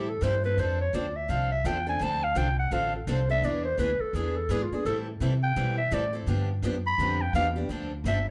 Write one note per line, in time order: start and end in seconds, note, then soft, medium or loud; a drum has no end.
0.00 0.21 A2 medium
0.00 0.11 G4 medium
0.09 0.25 A4 medium
0.21 0.57 G2 medium
0.21 0.34 E3 medium
0.21 0.34 G3 medium
0.21 0.34 C4 loud
0.21 0.34 E4 medium
0.21 0.34 A4 loud
0.21 0.45 C5 medium
0.44 0.58 C4 soft
0.44 0.58 E4 medium
0.44 0.58 A4 medium
0.44 0.61 B4 medium
0.57 0.92 F2 medium
0.57 0.79 F3 medium
0.57 0.79 C4 medium
0.57 0.79 D4 medium
0.57 0.79 A4 medium
0.57 0.80 C5 medium
0.81 0.96 C#5 medium
0.93 1.28 D2 medium
0.93 1.05 F3 medium
0.93 1.05 C4 medium
0.93 1.05 D4 medium
0.93 1.05 A4 medium
0.93 1.17 D5 medium
1.16 1.31 E5 medium
1.29 1.64 C2 medium
1.29 1.50 F3 medium
1.29 1.50 C4 medium
1.29 1.51 D4 medium
1.29 1.51 A4 medium
1.29 1.51 F5 medium
1.52 1.67 E5 medium
1.64 1.99 E2 medium
1.64 1.76 F3 medium
1.64 1.76 C4 medium
1.64 1.76 D4 medium
1.64 1.77 A4 medium
1.64 1.87 G5 loud
1.87 2.00 C4 soft
1.87 2.01 D4 medium
1.87 2.00 A4 medium
1.87 2.04 G#5 loud
2.01 2.35 D2 medium
2.01 2.22 D3 medium
2.01 2.22 F3 medium
2.01 2.22 C4 medium
2.01 2.22 D4 medium
2.01 2.22 A4 medium
2.01 2.25 A5 loud
2.24 2.38 F5 loud
2.35 2.70 C2 medium
2.35 2.47 D3 medium
2.35 2.47 F3 medium
2.35 2.47 C4 loud
2.35 2.47 D4 medium
2.35 2.47 A4 loud
2.35 2.58 G5 loud
2.59 2.74 F#5 medium
2.71 3.06 A1 medium
2.71 2.92 D3 medium
2.71 2.92 F3 medium
2.71 2.93 C4 medium
2.71 2.93 D4 medium
2.71 2.93 A4 medium
2.71 2.94 F5 medium
2.95 3.11 A4 soft
3.07 3.41 C2 medium
3.07 3.18 D3 medium
3.07 3.19 F3 medium
3.07 3.19 C4 medium
3.07 3.19 D4 medium
3.07 3.19 A4 loud
3.07 3.30 C5 medium
3.30 3.44 C4 soft
3.30 3.43 D4 medium
3.30 3.43 A4 medium
3.30 3.46 E5 loud
3.42 3.77 E2 medium
3.42 3.64 E3 medium
3.42 3.64 B3 medium
3.42 3.64 D4 medium
3.42 3.65 G#4 medium
3.42 3.64 B4 medium
3.42 3.64 D5 medium
3.65 3.80 C5 loud
3.78 3.98 D2 medium
3.78 3.90 E3 medium
3.78 3.90 B3 medium
3.78 3.90 D4 medium
3.78 3.91 G#4 medium
3.78 4.02 B4 medium
3.78 3.90 B4 medium
4.00 4.16 A4 medium
4.00 muted upright bass stroke soft
4.13 4.48 E2 medium
4.13 4.36 E3 medium
4.13 4.36 B3 medium
4.13 4.36 D4 medium
4.13 4.38 G#4 medium
4.13 4.36 G#4 medium
4.13 4.35 B4 medium
4.36 4.53 A4 medium
4.49 4.69 G#2 medium
4.49 4.61 E3 medium
4.49 4.61 B3 medium
4.49 4.62 D4 medium
4.49 4.64 G#4 medium
4.49 4.62 G#4 medium
4.49 4.61 B4 medium
4.63 4.76 F4 medium
4.71 4.86 B3 soft
4.71 4.86 D4 soft
4.71 4.86 G#4 medium
4.71 4.85 G#4 medium
4.71 muted upright bass stroke soft
4.85 5.20 A2 medium
4.85 5.06 E3 medium
4.85 5.06 G3 medium
4.85 5.07 C4 medium
4.85 5.07 E4 medium
4.85 4.99 A4 medium
4.85 5.07 A4 medium
5.20 5.55 C3 medium
5.20 5.32 E3 medium
5.20 5.32 G3 medium
5.20 5.32 C4 medium
5.20 5.32 E4 medium
5.20 5.33 A4 medium
5.43 5.76 G5 loud
5.56 5.91 B2 medium
5.56 5.77 E3 medium
5.56 5.77 G3 medium
5.56 5.77 C4 medium
5.56 5.78 E4 medium
5.56 5.78 A4 medium
5.78 5.95 E5 medium
5.91 6.26 A2 medium
5.91 6.03 E3 medium
5.91 6.03 G3 medium
5.91 6.03 C4 medium
5.91 6.03 E4 medium
5.91 6.04 A4 medium
5.91 6.15 D5 medium
6.13 6.28 C4 medium
6.13 6.27 E4 medium
6.13 6.27 A4 medium
6.27 6.62 G2 medium
6.27 6.48 D3 medium
6.27 6.48 F3 medium
6.27 6.49 B3 medium
6.27 6.49 D4 medium
6.27 6.49 G4 medium
6.62 6.97 F#2 medium
6.62 6.74 D3 medium
6.62 6.75 F3 medium
6.62 6.75 B3 medium
6.62 6.75 D4 medium
6.62 6.75 G4 loud
6.87 7.23 B5 loud
6.98 7.33 F2 medium
6.98 7.20 D3 medium
6.98 7.20 F3 medium
6.98 7.20 B3 medium
6.98 7.21 D4 medium
6.98 7.21 G4 medium
7.22 7.35 G5 loud
7.33 7.68 E2 loud
7.33 7.46 D3 medium
7.33 7.46 F3 medium
7.33 7.46 B3 medium
7.33 7.46 D4 medium
7.33 7.46 G4 loud
7.33 7.48 F5 loud
7.56 7.70 B3 medium
7.56 7.70 D4 medium
7.56 7.70 G4 medium
7.69 8.03 D2 medium
7.69 7.90 D3 medium
7.69 7.91 F3 medium
7.69 7.91 C4 medium
7.69 7.91 D4 medium
7.69 7.91 A4 medium
8.04 8.30 G1 medium
8.04 8.17 D3 medium
8.04 8.17 F3 medium
8.04 8.17 C4 medium
8.04 8.17 D4 medium
8.04 8.17 A4 loud
8.04 8.27 E5 medium